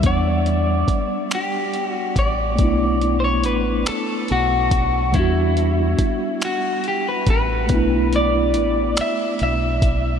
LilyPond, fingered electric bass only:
\new Staff \with { instrumentName = "Fingered electric bass" } { \clef bass \time 6/8 \key b \minor \tempo 4. = 47 e,4 r4. a,,8 | b,,4 a,,8 r8 b,,4 | e,4 r4. a,,8 | b,,4 a,,8 r8 b,,4 | }